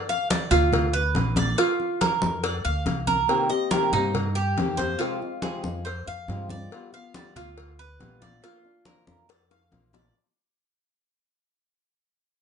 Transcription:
0.09 cuban tres F5, high conga
0.30 cuban tres D5, cowbell, high conga
0.51 upright bass D2, cuban tres F4, cowbell, high conga, low conga
0.73 cowbell, high conga, low conga
0.93 cuban tres B4, high conga
1.15 upright bass A#1, cowbell, high conga
1.36 cuban tres D5, cowbell, high conga
1.58 cuban tres F4, cowbell, high conga
1.80 high conga
2.01 cuban tres A#4, cowbell, high conga
2.22 upright bass F2, high conga
2.43 cuban tres D5, cowbell, high conga
2.65 upright bass D2, cuban tres F5, high conga
2.86 upright bass C2, cowbell, high conga
3.07 cuban tres A#4, high conga
3.28 steel-string acoustic guitar C3 D#3 A#3 C4 G4, cowbell, high conga
3.50 steel-string acoustic guitar A#3 C4 G4, cuban tres D#5, high conga
3.71 steel-string acoustic guitar C3 D#3 A#3 C4 G4, cuban tres A#4, cowbell, high conga
3.92 upright bass G2, steel-string acoustic guitar A#3 C4 G4, cuban tres D#4, cowbell, high conga, low conga
4.14 muted steel-string acoustic guitar stroke, cowbell, high conga, low conga
4.35 cuban tres G4, high conga
4.57 upright bass F2, steel-string acoustic guitar C3 D#3 A#3 C4 G4, cowbell, high conga
4.77 steel-string acoustic guitar A#3 C4 G4, cuban tres C5, cowbell, high conga
4.99 steel-string acoustic guitar C3 F3 G#3 C4 F4, cuban tres F4, cowbell, high conga
5.21 steel-string acoustic guitar G#3 C4 F4, high conga
5.42 steel-string acoustic guitar C3 F3 G#3 C4 F4, cuban tres G#4, cowbell, high conga
5.64 upright bass F2, steel-string acoustic guitar G#3 C4 F4, high conga
5.85 cuban tres C5, muted steel-string acoustic guitar stroke, cowbell, high conga
6.07 upright bass F2, cuban tres F5, high conga
6.28 upright bass G2, steel-string acoustic guitar C3 F3 G#3 C4 F4, cowbell, high conga
6.49 steel-string acoustic guitar G#3 C4 F4, cuban tres D5, high conga
6.71 steel-string acoustic guitar G3 B3 F4, cowbell, high conga
6.93 steel-string acoustic guitar B3 F4, cuban tres F5, high conga
7.14 steel-string acoustic guitar G3 B3 F4, cuban tres D5, cowbell, high conga
7.36 upright bass D2, steel-string acoustic guitar B3 F4, cuban tres F4, cowbell, high conga, low conga
7.57 muted steel-string acoustic guitar stroke, cowbell, high conga
7.79 cuban tres B4, high conga
7.99 upright bass A#1, steel-string acoustic guitar G3 B3 F4, cowbell, high conga
8.21 steel-string acoustic guitar B3 F4, cuban tres D5, cowbell, high conga
8.42 steel-string acoustic guitar F3 A#3 D4 F4, cuban tres F4, cowbell, high conga
8.64 steel-string acoustic guitar A#3 D4 F4, high conga
8.85 steel-string acoustic guitar F3 A#3 D4 F4, cuban tres A#4, cowbell, high conga
9.07 upright bass F2, steel-string acoustic guitar A#3 D4 F4, high conga
9.28 cuban tres D5, muted steel-string acoustic guitar stroke, cowbell, high bongo, high conga
9.51 cuban tres F5, high bongo, high conga
9.71 upright bass A#1, steel-string acoustic guitar F3 A#3 D4 F4, cowbell, high conga
9.93 steel-string acoustic guitar A#3 D4 F4, cuban tres D5, low bongo, high conga

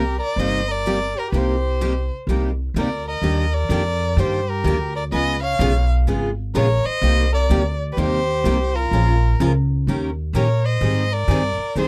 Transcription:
Already playing: upright bass C2, soprano saxophone G4, violin A#4
0.19 soprano saxophone A#4, violin D5
0.36 upright bass G1, steel-string acoustic guitar C3 G3 A#3 D#4 G4, soprano saxophone C5, violin D#5
0.68 soprano saxophone A#4, violin D5
0.86 steel-string acoustic guitar C3 G3 A#3 D#4 G4
1.15 soprano saxophone G4, violin A#4
1.27 soprano saxophone G4
1.32 upright bass C2, steel-string acoustic guitar C3 G3 A#3 D#4 G4, soprano saxophone G4, violin B4
1.37 violin C5
1.81 steel-string acoustic guitar C3 G3 A#3 D#4 G4
2.27 upright bass C2, steel-string acoustic guitar C3 G3 A#3 D#4 G4
2.74 upright bass D2, steel-string acoustic guitar C3 G3 A#3 D#4 G4, soprano saxophone A#4
2.80 violin D5
3.08 soprano saxophone A#4, violin D#5
3.22 upright bass D#2, steel-string acoustic guitar D#3 G3 A#3 D4 G4
3.54 soprano saxophone A#4, violin D5
3.69 upright bass F2, steel-string acoustic guitar D#3 G3 A#3 D4 G4
4.17 upright bass G2, steel-string acoustic guitar D#3 G3 A#3 D4 G4, soprano saxophone G4, violin C5
4.48 soprano saxophone G4, violin A#4
4.64 upright bass D2, steel-string acoustic guitar D#3 G3 A#3 D4 G4
4.95 soprano saxophone A#4, violin D5
5.12 upright bass C#2, steel-string acoustic guitar C#3 G#3 B3 F4 G#4, soprano saxophone B4, violin D#5
5.43 soprano saxophone C#5, violin F5
5.59 upright bass B1, steel-string acoustic guitar C#3 G#3 B3 F4 G#4
6.07 upright bass G#1, steel-string acoustic guitar C#3 G#3 B3 F4 G#4
6.55 upright bass A#1, steel-string acoustic guitar C#3 G#3 B3 F4 G#4, soprano saxophone A#4, violin C#5
6.85 soprano saxophone C5, violin D#5, muted upright bass stroke
7.01 upright bass C2, steel-string acoustic guitar C3 G3 A#3 D#4 G4
7.32 soprano saxophone A#4, violin D5
7.50 upright bass D2, steel-string acoustic guitar C3 G3 A#3 D#4 G4
7.92 soprano saxophone G4, violin B4
7.97 upright bass D#2, steel-string acoustic guitar C3 G3 A#3 D#4 G4, soprano saxophone G4, violin C5
8.44 upright bass C2, steel-string acoustic guitar C3 G3 A#3 D#4 G4
8.75 soprano saxophone F4, violin A#4
8.91 upright bass A#1, steel-string acoustic guitar F3 G#3 C#4 F4 A#4
9.40 upright bass C#2, steel-string acoustic guitar F3 G#3 C#4 F4 A#4
9.87 upright bass D#2, steel-string acoustic guitar D#3 A#3 C#4 G4 A#4
10.33 upright bass A#2, steel-string acoustic guitar D#3 A#3 C#4 G4 A#4, soprano saxophone A#4, violin C#5
10.65 soprano saxophone C5, violin D#5
10.81 upright bass G#2, steel-string acoustic guitar D#3 G3 C4 D#4 G#4
11.12 soprano saxophone A#4, violin D5
11.28 upright bass G2, steel-string acoustic guitar D#3 G3 C4 D#4 G#4
11.57 muted upright bass stroke
11.76 upright bass C2, steel-string acoustic guitar D#3 G3 C4 D#4 G#4, soprano saxophone G#4, violin C5

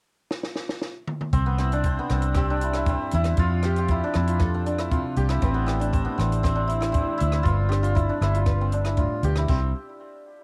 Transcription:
0.31 snare
0.43 snare
0.56 snare
0.69 snare
0.82 snare
1.07 mid tom
1.21 mid tom
1.33 fingered electric bass C2, nylon-string guitar C3, hammered dulcimer C4, kick, closed hi-hat
1.46 hammered dulcimer B3
1.58 hammered dulcimer C4, nylon-string guitar E4, cross-stick, closed hi-hat
1.72 hammered dulcimer D4, closed hi-hat
1.84 hammered dulcimer C4, kick, closed hi-hat
1.99 hammered dulcimer B3
2.10 fingered electric bass C2, nylon-string guitar G3, hammered dulcimer C4, cross-stick, closed hi-hat
2.22 closed hi-hat
2.35 hammered dulcimer C4, nylon-string guitar G4, kick, cross-stick, closed hi-hat
2.50 hammered dulcimer D4
2.61 hammered dulcimer E4, closed hi-hat
2.73 hammered dulcimer E4, cross-stick, closed hi-hat
2.86 nylon-string guitar G2, hammered dulcimer C4, kick, closed hi-hat
3.11 fingered electric bass E2, nylon-string guitar E4, hammered dulcimer E4, closed hi-hat
3.24 cross-stick, closed hi-hat
3.37 fingered electric bass F2, nylon-string guitar F3, hammered dulcimer F4, kick, closed hi-hat
3.63 hammered dulcimer G4, nylon-string guitar G4, cross-stick, closed hi-hat
3.76 hammered dulcimer G4, closed hi-hat
3.88 hammered dulcimer E4, kick, closed hi-hat
4.04 hammered dulcimer D4
4.14 fingered electric bass F2, nylon-string guitar C4, hammered dulcimer E4, cross-stick, closed hi-hat
4.27 hammered dulcimer F4, closed hi-hat
4.39 nylon-string guitar A4, kick, cross-stick, closed hi-hat
4.54 hammered dulcimer C4
4.66 hammered dulcimer D4, closed hi-hat
4.78 hammered dulcimer E4, cross-stick, closed hi-hat
4.91 nylon-string guitar C3, hammered dulcimer F4, kick, closed hi-hat
5.16 fingered electric bass C2, hammered dulcimer G4, nylon-string guitar G4, closed hi-hat
5.29 hammered dulcimer E4, cross-stick, closed hi-hat
5.41 fingered electric bass A1, nylon-string guitar A2 A3 C4 E4 B4, hammered dulcimer C4, kick, closed hi-hat
5.54 hammered dulcimer B3
5.66 hammered dulcimer C4, nylon-string guitar E4, cross-stick, closed hi-hat
5.80 hammered dulcimer D4, closed hi-hat
5.93 hammered dulcimer C4, kick, closed hi-hat
6.05 hammered dulcimer B3
6.18 fingered electric bass A1, nylon-string guitar A3, hammered dulcimer C4, cross-stick, closed hi-hat
6.32 closed hi-hat
6.43 hammered dulcimer C4, nylon-string guitar C5, kick, cross-stick, closed hi-hat
6.56 hammered dulcimer D4
6.68 hammered dulcimer E4, closed hi-hat
6.81 hammered dulcimer E4, cross-stick, closed hi-hat
6.92 nylon-string guitar E3, hammered dulcimer C4, kick, closed hi-hat
7.18 fingered electric bass D2, hammered dulcimer E4, nylon-string guitar E4, closed hi-hat
7.32 cross-stick, closed hi-hat
7.43 fingered electric bass G1, nylon-string guitar G2, hammered dulcimer F4, kick, closed hi-hat
7.69 nylon-string guitar D4, hammered dulcimer G4, cross-stick, closed hi-hat
7.83 hammered dulcimer F4, closed hi-hat
7.95 hammered dulcimer E4, kick, closed hi-hat
8.09 hammered dulcimer D4
8.21 fingered electric bass G1, nylon-string guitar G3, hammered dulcimer E4, cross-stick, closed hi-hat
8.35 hammered dulcimer F4, closed hi-hat
8.46 nylon-string guitar B4, kick, cross-stick, closed hi-hat
8.61 hammered dulcimer C4
8.72 hammered dulcimer D4, closed hi-hat
8.85 hammered dulcimer E4, cross-stick, closed hi-hat
8.97 nylon-string guitar A2, hammered dulcimer F4, kick, closed hi-hat
9.23 fingered electric bass D2, nylon-string guitar B2, hammered dulcimer G4, closed hi-hat
9.36 hammered dulcimer E4, cross-stick, closed hi-hat
9.48 fingered electric bass C2, nylon-string guitar C3 G3 C4 E4 G4, hammered dulcimer C4, kick, crash

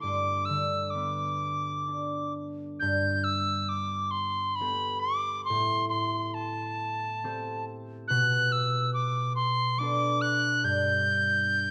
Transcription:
Already playing: harp A3 E4 A4
0.01 harp G2, tin whistle D6
0.45 harp D3, tin whistle E6
0.90 tin whistle D6
0.95 harp B3
1.88 harp D4
2.80 harp G2, tin whistle G6
3.24 tin whistle E6
3.62 tin whistle E6
3.69 tin whistle D6
4.11 tin whistle C6
4.56 tin whistle B5
4.60 harp B3 G4 A4
5.00 tin whistle D6
5.45 tin whistle C6
5.50 harp A2
5.89 tin whistle C6
6.34 tin whistle A5
7.24 harp C4 G4 A4
8.08 harp B2, tin whistle F#6
8.52 tin whistle E6
8.94 tin whistle D6
9.36 tin whistle C6
9.77 harp B3 D4, tin whistle D6
9.83 harp A4
10.21 tin whistle F#6
10.64 harp G2, tin whistle G6

